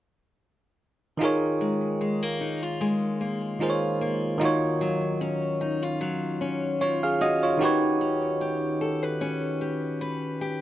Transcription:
1.17 tine electric piano D#3 D#4 F4, steel-string acoustic guitar D#3
1.22 tine electric piano G#4 A#4 C#5
1.61 steel-string acoustic guitar G#3
2.01 steel-string acoustic guitar G#3
2.23 steel-string acoustic guitar A#3
2.41 steel-string acoustic guitar D#4
2.63 steel-string acoustic guitar F4
2.81 steel-string acoustic guitar G#3
3.21 steel-string acoustic guitar A#3
3.60 tine electric piano D#3 D#4 F4 G#4 A#4 C5, steel-string acoustic guitar F4
3.70 tine electric piano C#5
4.01 steel-string acoustic guitar A#3
4.38 tine electric piano D#3 D#4 F4, steel-string acoustic guitar D#3
4.43 tine electric piano F#4 C#5
4.81 steel-string acoustic guitar F#3
5.21 steel-string acoustic guitar C#4
5.61 steel-string acoustic guitar D#4
5.83 steel-string acoustic guitar F4
6.01 steel-string acoustic guitar F#3
6.41 steel-string acoustic guitar C#4
6.81 steel-string acoustic guitar F4, tine electric piano F4 C#5
7.03 tine electric piano G#4 F5
7.21 steel-string acoustic guitar C#4, tine electric piano F#4 D#5
7.43 tine electric piano F4 C#5
7.58 tine electric piano D#3 D#4 F#4, steel-string acoustic guitar D#3
7.62 tine electric piano G4 B4 C#5
8.01 steel-string acoustic guitar C#4
8.41 steel-string acoustic guitar G4
8.81 steel-string acoustic guitar A4
9.03 steel-string acoustic guitar B4
9.21 steel-string acoustic guitar C#4
9.61 steel-string acoustic guitar G4
10.01 steel-string acoustic guitar B4
10.41 steel-string acoustic guitar G4

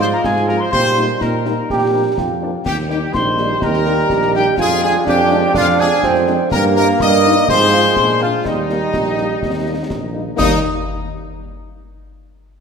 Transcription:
Already playing: tuba G#2, trombone section G#3 F4, euphonium F4
0.00 piccolo C6, snare
0.13 trumpet section A#4, piccolo A#5
0.23 tuba G#2, trumpet section G#4, piccolo G#5, concert bass drum, snare
0.36 snare
0.47 french horn section F3 C4 F4, trumpet section A#4, piccolo A#5, snare
0.59 trumpet section C5, piccolo C6
0.71 tuba A#2, trombone section G3 D#4, euphonium G4, trumpet section C5, piccolo C6, concert bass drum, snare, crash
0.97 french horn section G3 A#3 D#4, snare
1.20 tuba A#2, euphonium D#4, trumpet section A#4, piccolo A#5, concert bass drum, snare
1.45 french horn section G3 A#3 D#4, euphonium D#4, snare
1.70 tuba A#2, trombone section F3 D4, euphonium G4, concert bass drum, snare
1.93 french horn section F3 A#3 D4
2.17 tuba F2, euphonium F4, concert bass drum, snare
2.41 french horn section F3 A#3 D4
2.64 tuba D#2, trombone section G3 D#4, trumpet section G4, piccolo G5, concert bass drum, snare, crash
2.88 french horn section G3 A#3 D#4, trumpet section G4, piccolo G5, snare
3.14 tuba A#1, euphonium D#4, trumpet section C5, piccolo C6, concert bass drum, snare
3.38 french horn section G3 A#3 D#4, snare
3.62 tuba D#2, euphonium G4, trumpet section A#4, piccolo A#5, concert bass drum, snare
3.74 snare
3.85 french horn section G3 A#3 D#4, snare
4.10 tuba A#1, concert bass drum, snare
4.22 snare
4.34 french horn section G3 A#3 D#4, trumpet section G4, piccolo G5, snare
4.58 tuba F2, trombone section F3 D4, euphonium F4, trumpet section G#4, piccolo G#5, concert bass drum, snare, crash
4.82 french horn section G#3 D4, trumpet section G#4, piccolo G#5, snare
5.06 tuba F2, euphonium D4, trumpet section G4, piccolo G5, concert bass drum, snare
5.31 french horn section G#3 D4, snare
5.54 tuba F2, euphonium D4, trumpet section F4, piccolo F5, concert bass drum, snare
5.67 snare
5.79 french horn section G#3 D4, trumpet section G#4, piccolo G#5, snare
6.03 tuba F2, euphonium C4, concert bass drum, snare
6.15 snare
6.27 french horn section G#3 D4, snare
6.51 tuba G2, trombone section G3 A#3, euphonium A#3, trumpet section A#4, piccolo A#5, concert bass drum, snare, crash
6.75 french horn section G3 A#3 D#4, trumpet section A#4, piccolo A#5, snare
7.00 tuba G2, trombone section G3 A#3, trumpet section D#5, piccolo D#6, concert bass drum, snare
7.24 french horn section G3 A#3 D#4, snare
7.48 tuba G#2, trombone section F3 C4, euphonium G#3, trumpet section C5, piccolo C6, concert bass drum, snare
7.60 snare
7.72 french horn section F3 C4 F4, snare
7.96 tuba A#2, trombone section F3 D4, concert bass drum, snare
8.09 snare
8.21 french horn section F3 A#3 D4, trumpet section F4, piccolo F5, snare
8.45 tuba D#2, trombone section G3 D#4, euphonium G3, trumpet section D#4, piccolo D#5, concert bass drum, snare, crash
8.69 french horn section G3 A#3 D#4, snare
8.94 tuba A#1, concert bass drum, snare
9.17 french horn section G3 A#3 D#4, snare
9.42 tuba D#2, concert bass drum, snare
9.66 french horn section G3 A#3 D#4
9.90 tuba A#1, concert bass drum, snare
10.13 french horn section G3 A#3 D#4
10.36 tuba D#2, french horn section G3 A#3 D#4, trombone section G3 D#4, trumpet section D#4, piccolo D#6, concert bass drum, snare, crash

